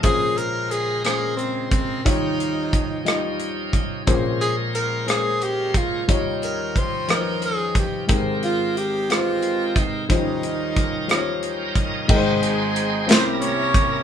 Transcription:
<<
  \new Staff \with { instrumentName = "Tenor saxophone" } { \time 6/8 \key aes \major \tempo 4. = 60 aes'8 bes'8 aes'8 aes'8 c'8 c'8 | ees'2 r4 | r8 aes'8 bes'8 aes'8 g'8 f'8 | r8 bes'8 c''8 bes'8 aes'8 g'8 |
r8 f'8 g'8 f'4 ees'8 | ees'2 r4 | r2. | }
  \new Staff \with { instrumentName = "Horn section" } { \time 6/8 \key aes \major r2. | r2. | r2. | r2. |
r2. | r2. | r8 <aes c' ees' aes'>4 <c' e' g' c''>8 <des' e' bes' des''>4 | }
  \new Staff \with { instrumentName = "Tonewheel organ" } { \time 6/8 \key aes \major << { r2. | r2. | r2. | r2. |
r2. | r2 g''8 ees''8 | r2. | } \\ { <des aes bes' c''>2. | <f des' ees' ges' g'>2. | <aes des' bes' c''>2. | <f des' ees' g''>2. |
<aes ces' c' g' bes'>2. | <g des' ees' f' bes'>2. | <aes ees' ces'' c'' g''>4. <bes e' bes'>4. | } >> }
  \new Staff \with { instrumentName = "Upright piano" } { \time 6/8 \key aes \major <bes des' aes' c''>4. <des bes aes' c''>4. | <g ees' f' des''>4. <g ees' f' ees''>4. | <bes des' aes' c''>4. <aes bes des' c''>4. | <g ees' f' des''>4. <f ees' f' ces'' c''>4. |
<aes c' g' bes'>4. <aes c' g' ces'' c''>4. | <f g des' f' c''>4. <g des' f' c'' des''>4. | <aes ees' bes' c'' g''>4. <bes c' des' e'>4. | }
  \new Staff \with { instrumentName = "Upright piano" } { \clef bass \time 6/8 \key aes \major <bes,, bes,>2. | <ees, ees>2. | <bes,, bes,>2. | <ees, ees>2. |
<aes,, aes,>2. | <ees, ees>2. | <aes,, aes,>4. <c, c>4. | }
  \new DrumStaff \with { instrumentName = "Drums" } \drummode { \time 6/8 <hh bd>8 hh8 hh8 <hh ss>8 hh8 <hh bd>8 | <hh bd>8 hh8 <hh bd>8 <hh ss>8 hh8 <hh bd>8 | <hh bd>8 hh8 hh8 <hh ss>8 hh8 <hh bd>8 | <hh bd>8 hh8 <hh bd>8 <hh ss>8 hh8 <hh bd>8 |
<hh bd>8 hh8 hh8 <hh ss>8 hh8 <hh bd>8 | <hh bd>8 hh8 <hh bd>8 <hh ss>8 hh8 <hh bd>8 | <cymc bd>8 hh8 hh8 <hh sn>8 hh8 <hh bd>8 | }
>>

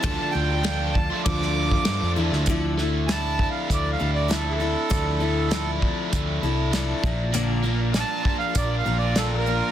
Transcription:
<<
  \new Staff \with { instrumentName = "Accordion" } { \time 4/4 \key d \minor \tempo 4 = 98 a''8 g''4 a''8 d'''4. r8 | r4 \tuplet 3/2 { <gis'' a''>4 f''8 d''8 f''8 d''8 a'8 <gis' a'>4~ } | <gis' a'>4. r2 r8 | r4 \tuplet 3/2 { <gis'' a''>4 f''8 d''8 f''8 d''8 a'8 <a' bes'>4 } | }
  \new Staff \with { instrumentName = "Tonewheel organ" } { \time 4/4 \key d \minor <f' a' d'' f''>2 <f a' d'' e''>2 | r1 | r1 | <f' bes' d'' f''>1 | }
  \new Staff \with { instrumentName = "Overdriven electric guitar" } { \time 4/4 \key d \minor <d a d' f'>8 <d a d' f'>8 <d a d' f'>16 <a d' f'>8 <a d' f'>16 <d a d' f'>16 <a d' f'>8. <d a d' f'>16 <a d' f'>16 <d a d' f'>16 <a d' f'>16 | d8 a8 e'8 d'8 a8 e'8 d'8 e'8 | d8 a8 e'8 d'8 a8 e'8 d'8 bes,8 | bes,8 bes8 f'8 d'8 bes8 f'8 d'8 f'8 | }
  \new Staff \with { instrumentName = "Steel-string acoustic guitar" } { \time 4/4 \key d \minor <d f d' f' a'>8 <d' f' a'>8 <f d' f' a'>4 <d f d' a'>4 <f d' a'>8 <d' e' a'>8 | <d f d' e' a'>8 <d' e' a'>8 <f d' e' a'>4. <d' e' a'>8 <f d' e' a'>8 <d' e' a'>8 | <d f d' e' a'>8 <d' e' a'>8 <f d' e' a'>4. <d' e' a'>8 <f d' e' a'>8 <f bes d' bes'>8 | <bes, d f bes d' bes'>8 <f bes d' bes'>8 <f bes d' bes'>4. <f bes d' bes'>8 <f bes d' bes'>8 <f bes d' bes'>8 | }
  \new Staff \with { instrumentName = "Picked electric bass" } { \clef bass \time 4/4 \key d \minor d,16 r16 d,4. d,4 g,16 f,16 e,16 d,16 | d,2 d,8 d,4. | d,2 d,8 c,4 bes,,8~ | bes,,4. r8 bes,,8 bes,,4. | }
  \new DrumStaff \with { instrumentName = "Drums" } \drummode { \time 4/4 <bd rb>4 <rb sn>8 bd8 <bd rb>16 sn8 bd16 <rb sn>8. sn16 | <hh bd>8 sn8 <hh sn>8 bd8 <hh bd>4 <hh sn>4 | <hh bd>4 <hh sn>8 bd8 <hh bd>4 <hh sn>8 bd8 | hh4 <hh sn>8 bd8 <hh bd>4 <hh sn>4 | }
>>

